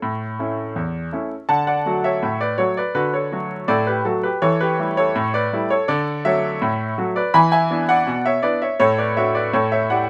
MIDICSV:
0, 0, Header, 1, 2, 480
1, 0, Start_track
1, 0, Key_signature, 2, "major"
1, 0, Tempo, 730816
1, 16, Time_signature, 2, 2, 24, 8
1, 6631, End_track
2, 0, Start_track
2, 0, Title_t, "Grand piano"
2, 0, Program_c, 0, 0
2, 0, Note_on_c, 0, 69, 56
2, 0, Note_on_c, 0, 73, 80
2, 15, Note_on_c, 0, 45, 69
2, 134, Control_c, 0, 64, 127
2, 221, Note_off_c, 0, 45, 0
2, 258, Note_on_c, 0, 57, 40
2, 261, Note_on_c, 0, 61, 44
2, 262, Note_on_c, 0, 64, 43
2, 391, Note_off_c, 0, 57, 0
2, 393, Note_off_c, 0, 61, 0
2, 394, Note_off_c, 0, 64, 0
2, 498, Note_on_c, 0, 40, 62
2, 508, Control_c, 0, 64, 0
2, 704, Note_off_c, 0, 40, 0
2, 720, Note_off_c, 0, 69, 0
2, 739, Note_on_c, 0, 57, 35
2, 741, Note_on_c, 0, 61, 37
2, 742, Note_off_c, 0, 73, 0
2, 743, Note_on_c, 0, 64, 43
2, 872, Note_off_c, 0, 57, 0
2, 874, Note_off_c, 0, 61, 0
2, 875, Note_off_c, 0, 64, 0
2, 976, Note_on_c, 0, 81, 80
2, 978, Note_on_c, 0, 50, 68
2, 984, Note_on_c, 0, 78, 62
2, 1088, Note_off_c, 0, 78, 0
2, 1097, Note_on_c, 0, 78, 69
2, 1100, Note_off_c, 0, 81, 0
2, 1104, Note_on_c, 0, 74, 53
2, 1113, Control_c, 0, 64, 127
2, 1184, Note_off_c, 0, 50, 0
2, 1221, Note_on_c, 0, 54, 41
2, 1224, Note_on_c, 0, 57, 41
2, 1225, Note_on_c, 0, 66, 45
2, 1327, Note_off_c, 0, 74, 0
2, 1341, Note_off_c, 0, 78, 0
2, 1341, Note_on_c, 0, 76, 76
2, 1347, Note_on_c, 0, 73, 56
2, 1354, Note_off_c, 0, 54, 0
2, 1356, Note_off_c, 0, 57, 0
2, 1357, Note_off_c, 0, 66, 0
2, 1462, Note_on_c, 0, 45, 64
2, 1472, Control_c, 0, 64, 0
2, 1569, Note_off_c, 0, 73, 0
2, 1580, Note_on_c, 0, 74, 75
2, 1582, Note_off_c, 0, 76, 0
2, 1588, Note_on_c, 0, 71, 52
2, 1667, Note_off_c, 0, 45, 0
2, 1693, Note_on_c, 0, 73, 68
2, 1697, Note_on_c, 0, 54, 39
2, 1698, Note_off_c, 0, 71, 0
2, 1699, Note_on_c, 0, 57, 42
2, 1700, Note_on_c, 0, 66, 45
2, 1702, Note_off_c, 0, 74, 0
2, 1702, Note_on_c, 0, 69, 48
2, 1814, Note_off_c, 0, 69, 0
2, 1818, Note_off_c, 0, 73, 0
2, 1821, Note_on_c, 0, 74, 63
2, 1830, Note_off_c, 0, 54, 0
2, 1830, Note_on_c, 0, 71, 52
2, 1832, Note_off_c, 0, 57, 0
2, 1833, Note_off_c, 0, 66, 0
2, 1927, Note_off_c, 0, 71, 0
2, 1935, Note_on_c, 0, 50, 70
2, 1937, Note_on_c, 0, 71, 81
2, 1942, Note_off_c, 0, 74, 0
2, 1943, Note_on_c, 0, 66, 59
2, 2055, Note_off_c, 0, 66, 0
2, 2060, Note_off_c, 0, 71, 0
2, 2060, Note_on_c, 0, 73, 61
2, 2066, Note_on_c, 0, 69, 47
2, 2091, Control_c, 0, 64, 127
2, 2142, Note_off_c, 0, 50, 0
2, 2181, Note_on_c, 0, 54, 41
2, 2184, Note_on_c, 0, 57, 38
2, 2185, Note_on_c, 0, 66, 49
2, 2313, Note_off_c, 0, 54, 0
2, 2315, Note_off_c, 0, 57, 0
2, 2316, Note_off_c, 0, 66, 0
2, 2399, Note_off_c, 0, 69, 0
2, 2416, Note_on_c, 0, 74, 83
2, 2418, Note_on_c, 0, 45, 76
2, 2421, Note_off_c, 0, 73, 0
2, 2424, Note_on_c, 0, 69, 65
2, 2429, Control_c, 0, 64, 0
2, 2535, Note_off_c, 0, 69, 0
2, 2539, Note_off_c, 0, 74, 0
2, 2540, Note_on_c, 0, 71, 68
2, 2549, Note_on_c, 0, 67, 53
2, 2624, Note_off_c, 0, 45, 0
2, 2657, Note_off_c, 0, 67, 0
2, 2660, Note_on_c, 0, 69, 62
2, 2661, Note_off_c, 0, 71, 0
2, 2662, Note_on_c, 0, 54, 42
2, 2665, Note_on_c, 0, 57, 41
2, 2668, Note_on_c, 0, 66, 44
2, 2777, Note_off_c, 0, 66, 0
2, 2781, Note_off_c, 0, 69, 0
2, 2781, Note_on_c, 0, 71, 64
2, 2789, Note_on_c, 0, 67, 51
2, 2794, Note_off_c, 0, 54, 0
2, 2797, Note_off_c, 0, 57, 0
2, 2898, Note_off_c, 0, 67, 0
2, 2902, Note_off_c, 0, 71, 0
2, 2902, Note_on_c, 0, 73, 88
2, 2903, Note_on_c, 0, 52, 78
2, 2910, Note_on_c, 0, 69, 64
2, 3019, Note_off_c, 0, 69, 0
2, 3022, Note_off_c, 0, 73, 0
2, 3025, Note_on_c, 0, 71, 81
2, 3034, Control_c, 0, 64, 127
2, 3034, Note_on_c, 0, 67, 61
2, 3107, Note_off_c, 0, 52, 0
2, 3147, Note_on_c, 0, 55, 42
2, 3149, Note_on_c, 0, 57, 42
2, 3153, Note_on_c, 0, 64, 52
2, 3252, Note_off_c, 0, 67, 0
2, 3264, Note_off_c, 0, 71, 0
2, 3266, Note_on_c, 0, 73, 90
2, 3275, Note_on_c, 0, 69, 65
2, 3278, Note_off_c, 0, 55, 0
2, 3279, Note_off_c, 0, 57, 0
2, 3282, Note_off_c, 0, 64, 0
2, 3386, Note_on_c, 0, 45, 84
2, 3387, Control_c, 0, 64, 0
2, 3492, Note_off_c, 0, 69, 0
2, 3505, Note_off_c, 0, 73, 0
2, 3507, Note_on_c, 0, 74, 82
2, 3513, Note_on_c, 0, 71, 66
2, 3589, Note_off_c, 0, 45, 0
2, 3629, Note_on_c, 0, 55, 44
2, 3631, Note_on_c, 0, 57, 48
2, 3635, Note_on_c, 0, 64, 61
2, 3732, Note_off_c, 0, 71, 0
2, 3745, Note_off_c, 0, 74, 0
2, 3746, Note_on_c, 0, 73, 81
2, 3755, Note_on_c, 0, 69, 56
2, 3760, Note_off_c, 0, 55, 0
2, 3761, Note_off_c, 0, 57, 0
2, 3764, Note_off_c, 0, 64, 0
2, 3861, Note_off_c, 0, 69, 0
2, 3862, Note_on_c, 0, 74, 87
2, 3865, Note_off_c, 0, 73, 0
2, 3865, Note_on_c, 0, 50, 93
2, 3872, Note_on_c, 0, 69, 64
2, 3981, Control_c, 0, 64, 127
2, 4069, Note_off_c, 0, 50, 0
2, 4091, Note_off_c, 0, 69, 0
2, 4103, Note_off_c, 0, 74, 0
2, 4104, Note_on_c, 0, 76, 88
2, 4106, Note_on_c, 0, 54, 43
2, 4107, Note_on_c, 0, 57, 50
2, 4110, Note_on_c, 0, 66, 57
2, 4112, Note_on_c, 0, 73, 64
2, 4237, Note_off_c, 0, 54, 0
2, 4238, Note_off_c, 0, 57, 0
2, 4239, Note_off_c, 0, 66, 0
2, 4347, Note_on_c, 0, 45, 79
2, 4350, Control_c, 0, 64, 0
2, 4547, Note_off_c, 0, 45, 0
2, 4584, Note_on_c, 0, 54, 54
2, 4586, Note_on_c, 0, 57, 46
2, 4588, Note_on_c, 0, 66, 56
2, 4678, Note_off_c, 0, 73, 0
2, 4700, Note_off_c, 0, 76, 0
2, 4702, Note_on_c, 0, 74, 76
2, 4709, Note_on_c, 0, 71, 61
2, 4714, Note_off_c, 0, 54, 0
2, 4715, Note_off_c, 0, 57, 0
2, 4717, Note_off_c, 0, 66, 0
2, 4816, Note_off_c, 0, 71, 0
2, 4820, Note_off_c, 0, 74, 0
2, 4820, Note_on_c, 0, 83, 108
2, 4822, Note_on_c, 0, 52, 92
2, 4827, Note_on_c, 0, 80, 81
2, 4928, Note_off_c, 0, 80, 0
2, 4937, Note_on_c, 0, 80, 99
2, 4938, Note_off_c, 0, 83, 0
2, 4947, Note_on_c, 0, 76, 76
2, 4959, Control_c, 0, 64, 127
2, 5023, Note_off_c, 0, 52, 0
2, 5061, Note_on_c, 0, 59, 54
2, 5064, Note_on_c, 0, 62, 53
2, 5068, Note_on_c, 0, 64, 57
2, 5164, Note_off_c, 0, 76, 0
2, 5176, Note_off_c, 0, 80, 0
2, 5180, Note_on_c, 0, 78, 93
2, 5189, Note_on_c, 0, 74, 73
2, 5191, Note_off_c, 0, 59, 0
2, 5193, Note_off_c, 0, 62, 0
2, 5196, Note_off_c, 0, 64, 0
2, 5298, Note_on_c, 0, 47, 77
2, 5304, Control_c, 0, 64, 0
2, 5405, Note_off_c, 0, 74, 0
2, 5416, Note_off_c, 0, 78, 0
2, 5423, Note_on_c, 0, 76, 90
2, 5430, Note_on_c, 0, 73, 60
2, 5500, Note_off_c, 0, 47, 0
2, 5534, Note_off_c, 0, 73, 0
2, 5534, Note_on_c, 0, 74, 79
2, 5538, Note_off_c, 0, 76, 0
2, 5538, Note_on_c, 0, 59, 49
2, 5539, Note_on_c, 0, 62, 46
2, 5542, Note_on_c, 0, 71, 61
2, 5543, Note_on_c, 0, 64, 50
2, 5649, Note_off_c, 0, 71, 0
2, 5654, Note_off_c, 0, 74, 0
2, 5660, Note_on_c, 0, 76, 72
2, 5668, Note_on_c, 0, 73, 56
2, 5669, Note_off_c, 0, 59, 0
2, 5669, Note_off_c, 0, 62, 0
2, 5672, Note_off_c, 0, 64, 0
2, 5767, Note_off_c, 0, 73, 0
2, 5777, Note_off_c, 0, 76, 0
2, 5777, Note_on_c, 0, 73, 100
2, 5780, Note_on_c, 0, 45, 81
2, 5787, Note_on_c, 0, 69, 66
2, 5893, Note_off_c, 0, 69, 0
2, 5895, Note_off_c, 0, 73, 0
2, 5900, Note_on_c, 0, 74, 69
2, 5903, Control_c, 0, 64, 127
2, 5908, Note_on_c, 0, 71, 49
2, 5981, Note_off_c, 0, 45, 0
2, 6013, Note_off_c, 0, 71, 0
2, 6017, Note_off_c, 0, 74, 0
2, 6021, Note_on_c, 0, 76, 77
2, 6022, Note_on_c, 0, 57, 41
2, 6025, Note_on_c, 0, 62, 42
2, 6027, Note_on_c, 0, 66, 51
2, 6027, Note_on_c, 0, 73, 63
2, 6133, Note_off_c, 0, 73, 0
2, 6138, Note_off_c, 0, 76, 0
2, 6139, Note_on_c, 0, 74, 70
2, 6151, Note_on_c, 0, 71, 56
2, 6153, Note_off_c, 0, 57, 0
2, 6154, Note_off_c, 0, 62, 0
2, 6156, Note_off_c, 0, 66, 0
2, 6255, Note_off_c, 0, 71, 0
2, 6258, Note_off_c, 0, 74, 0
2, 6261, Note_on_c, 0, 73, 80
2, 6262, Control_c, 0, 64, 0
2, 6262, Note_on_c, 0, 45, 82
2, 6269, Note_on_c, 0, 69, 62
2, 6367, Control_c, 0, 64, 127
2, 6375, Note_off_c, 0, 69, 0
2, 6379, Note_off_c, 0, 73, 0
2, 6383, Note_on_c, 0, 76, 74
2, 6391, Note_on_c, 0, 73, 55
2, 6465, Note_off_c, 0, 45, 0
2, 6497, Note_off_c, 0, 73, 0
2, 6500, Note_off_c, 0, 76, 0
2, 6502, Note_on_c, 0, 78, 69
2, 6505, Note_on_c, 0, 57, 36
2, 6505, Note_on_c, 0, 64, 36
2, 6511, Note_on_c, 0, 67, 41
2, 6511, Note_on_c, 0, 74, 52
2, 6617, Note_off_c, 0, 74, 0
2, 6621, Note_off_c, 0, 78, 0
2, 6631, Note_off_c, 0, 57, 0
2, 6631, Note_off_c, 0, 64, 0
2, 6631, Note_off_c, 0, 67, 0
2, 6631, End_track
0, 0, End_of_file